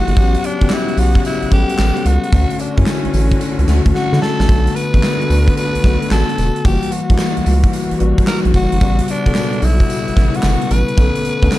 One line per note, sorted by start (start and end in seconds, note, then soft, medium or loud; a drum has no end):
0.00 0.14 E3 medium
0.00 0.17 F#3 medium
0.00 0.14 A#3 medium
0.00 0.19 A#3 medium
0.00 0.18 E4 medium
0.00 0.47 F#4 loud
0.00 0.14 G4 medium
0.00 0.18 G4 loud
0.00 2.28 F#5 medium
0.07 0.14 G1 loud
0.07 closed hi-hat medium
0.17 0.36 A1 loud
0.17 2.31 C#3 medium
0.17 0.45 F#3 medium
0.17 2.31 G3 medium
0.17 2.31 B3 medium
0.17 0.45 B3 medium
0.17 0.45 C#4 medium
0.17 0.46 G4 medium
0.17 kick loud
0.17 closed hi-hat medium
0.17 tambourine medium
0.34 closed hi-hat medium
0.44 0.74 D4 loud
0.44 closed hi-hat medium
0.44 tambourine medium
0.61 0.68 G1 medium
0.61 1.23 B3 medium
0.61 1.24 C#4 medium
0.61 1.23 F#4 medium
0.61 1.24 G4 medium
0.61 kick medium
0.61 closed hi-hat medium
0.70 1.01 E4 loud
0.70 snare loud
0.70 clap medium
0.70 tambourine medium
0.88 closed hi-hat soft
0.97 1.17 B1 medium
0.97 1.25 F#4 loud
0.97 open hi-hat medium
0.97 tambourine medium
1.15 kick medium
1.15 closed hi-hat medium
1.25 1.50 E4 loud
1.25 closed hi-hat medium
1.25 tambourine medium
1.42 1.46 A1 soft
1.42 closed hi-hat soft
1.51 1.64 A1 medium
1.51 2.09 G3 medium
1.51 2.09 B3 medium
1.51 2.09 C#4 medium
1.51 2.08 G4 loud
1.51 2.09 A4 medium
1.51 kick medium
1.51 closed hi-hat medium
1.69 closed hi-hat medium
1.79 1.92 A1 medium
1.79 snare loud
1.79 clap loud
1.79 tambourine loud
1.97 closed hi-hat soft
2.05 2.18 C#2 loud
2.05 2.58 F#4 loud
2.05 closed hi-hat medium
2.05 tambourine medium
2.24 closed hi-hat medium
2.33 2.45 D2 loud
2.33 2.61 D3 medium
2.33 4.47 D3 medium
2.33 2.61 A3 medium
2.33 6.61 A3 medium
2.33 4.47 C#4 medium
2.33 2.62 C#4 medium
2.33 4.47 F#4 loud
2.33 2.62 F#4 medium
2.33 kick loud
2.33 closed hi-hat medium
2.33 tambourine medium
2.50 closed hi-hat medium
2.59 2.62 C#4 medium
2.59 2.79 D4 medium
2.59 closed hi-hat medium
2.59 tambourine medium
2.77 2.84 F#2 medium
2.77 3.39 D3 medium
2.77 3.40 A3 medium
2.77 3.68 C#4 medium
2.77 3.40 C#4 medium
2.77 3.40 E4 medium
2.77 kick loud
2.77 closed hi-hat medium
2.86 snare loud
2.86 clap medium
2.86 tambourine loud
3.05 3.08 A1 soft
3.05 closed hi-hat soft
3.14 3.33 A1 loud
3.14 open hi-hat medium
3.14 tambourine medium
3.31 kick medium
3.31 closed hi-hat medium
3.41 closed hi-hat medium
3.41 tambourine medium
3.59 3.65 C#2 medium
3.59 closed hi-hat soft
3.67 3.81 D2 loud
3.67 4.25 D3 medium
3.67 4.25 A3 medium
3.67 4.25 C#4 medium
3.67 4.25 F#4 loud
3.67 snare medium
3.67 closed hi-hat medium
3.86 3.93 D2 medium
3.86 kick medium
3.86 closed hi-hat medium
3.95 4.20 F#4 loud
3.95 snare medium
4.13 4.19 D3 loud
4.13 snare medium
4.22 4.77 A4 loud
4.22 snare medium
4.40 4.46 A1 medium
4.40 snare loud
4.48 4.68 B1 loud
4.48 4.77 D3 medium
4.48 6.63 D3 medium
4.48 4.77 A3 medium
4.48 6.63 B3 medium
4.48 4.78 B3 medium
4.48 6.63 F#4 medium
4.48 4.78 F#4 medium
4.48 kick loud
4.48 closed hi-hat medium
4.48 tambourine medium
4.67 closed hi-hat medium
4.76 5.57 B4 loud
4.76 closed hi-hat medium
4.76 tambourine medium
4.94 5.01 A1 medium
4.94 5.56 D3 medium
4.94 5.56 A3 medium
4.94 5.56 B3 medium
4.94 5.57 A4 medium
4.94 kick medium
4.94 closed hi-hat medium
5.03 snare loud
5.03 clap medium
5.03 tambourine loud
5.21 closed hi-hat soft
5.30 5.49 D2 medium
5.30 open hi-hat medium
5.30 tambourine medium
5.48 kick medium
5.48 closed hi-hat medium
5.57 6.07 B4 loud
5.57 closed hi-hat medium
5.57 tambourine medium
5.75 5.79 B1 soft
5.75 closed hi-hat medium
5.84 5.97 B1 medium
5.84 6.41 D3 medium
5.84 6.42 A3 medium
5.84 6.42 B3 medium
5.84 6.42 F#4 medium
5.84 kick loud
5.84 snare medium
5.84 closed hi-hat medium
6.02 closed hi-hat medium
6.11 6.24 A1 medium
6.11 6.66 A4 loud
6.11 snare loud
6.11 clap medium
6.11 tambourine medium
6.29 closed hi-hat soft
6.38 6.51 E1 medium
6.38 closed hi-hat medium
6.38 tambourine medium
6.56 closed hi-hat soft
6.64 6.78 F#1 loud
6.64 8.79 E3 medium
6.64 6.94 E3 medium
6.64 10.93 G3 medium
6.64 6.94 G3 medium
6.64 8.79 A#3 medium
6.64 6.94 A#3 medium
6.64 10.93 F#4 loud
6.64 6.94 F#4 medium
6.64 6.94 G4 medium
6.64 kick loud
6.64 closed hi-hat medium
6.64 tambourine medium
6.83 closed hi-hat medium
6.92 8.01 F#4 medium
6.92 closed hi-hat medium
6.92 tambourine medium
7.09 7.17 A#1 medium
7.09 7.72 E3 medium
7.09 7.72 G3 medium
7.09 7.15 A3 medium
7.09 7.72 E4 medium
7.09 kick medium
7.09 closed hi-hat medium
7.17 7.75 A#3 medium
7.17 snare loud
7.17 clap medium
7.17 tambourine loud
7.37 7.41 C#2 medium
7.37 closed hi-hat soft
7.46 7.66 C#2 medium
7.46 open hi-hat medium
7.46 tambourine medium
7.64 kick medium
7.64 closed hi-hat medium
7.73 closed hi-hat medium
7.73 tambourine medium
7.91 7.95 A1 soft
7.91 closed hi-hat soft
7.99 8.13 A1 medium
7.99 8.57 E3 medium
7.99 8.57 G3 medium
7.99 8.58 A#3 medium
7.99 8.58 F#4 medium
7.99 closed hi-hat medium
8.18 kick loud
8.18 closed hi-hat medium
8.27 8.40 A#4 loud
8.27 snare loud
8.27 clap medium
8.27 tambourine medium
8.45 8.52 A#1 loud
8.45 closed hi-hat soft
8.54 8.67 F#1 loud
8.54 9.12 F#4 loud
8.54 kick medium
8.54 closed hi-hat medium
8.54 tambourine medium
8.72 8.79 G1 medium
8.72 closed hi-hat medium
8.80 9.01 A1 loud
8.80 11.59 B2 medium
8.80 9.10 C#3 medium
8.80 9.10 G3 medium
8.80 10.95 B3 medium
8.80 9.10 B3 medium
8.80 9.10 F#4 medium
8.80 kick loud
8.80 closed hi-hat medium
8.80 tambourine medium
8.99 closed hi-hat medium
9.08 9.65 D4 medium
9.08 closed hi-hat medium
9.08 tambourine medium
9.26 9.33 G1 medium
9.26 9.88 B2 medium
9.26 9.88 G3 medium
9.26 9.88 B3 medium
9.26 9.89 A4 medium
9.26 kick medium
9.26 closed hi-hat medium
9.35 snare loud
9.35 clap medium
9.35 tambourine medium
9.53 closed hi-hat soft
9.62 9.82 B1 medium
9.62 10.38 E4 loud
9.62 open hi-hat loud
9.62 tambourine medium
9.80 kick medium
9.80 closed hi-hat medium
9.90 closed hi-hat medium
9.90 tambourine medium
10.08 10.11 A1 soft
10.08 closed hi-hat medium
10.16 10.29 A1 medium
10.16 10.25 B2 medium
10.16 10.74 G3 medium
10.16 10.74 B3 medium
10.16 10.74 E4 medium
10.16 kick medium
10.16 snare medium
10.16 closed hi-hat medium
10.23 10.77 C#3 medium
10.34 10.73 F#4 loud
10.34 closed hi-hat medium
10.43 10.56 G1 loud
10.43 snare loud
10.43 clap loud
10.43 tambourine medium
10.61 closed hi-hat soft
10.71 10.83 A1 loud
10.71 11.59 B4 loud
10.71 closed hi-hat medium
10.71 tambourine medium
10.88 closed hi-hat medium
10.97 11.10 B1 loud
10.97 11.26 D3 medium
10.97 11.59 D3 medium
10.97 11.59 A3 medium
10.97 11.26 B3 medium
10.97 11.59 B3 medium
10.97 11.26 C#4 medium
10.97 11.26 A4 medium
10.97 kick loud
10.97 closed hi-hat medium
10.97 tambourine medium
11.15 closed hi-hat medium
11.25 closed hi-hat medium
11.25 tambourine medium
11.42 11.49 D2 medium
11.42 11.59 D3 medium
11.42 11.59 B3 medium
11.42 11.59 C#4 medium
11.42 11.59 A4 medium
11.42 kick medium
11.42 closed hi-hat medium
11.52 snare loud
11.52 clap medium
11.52 tambourine loud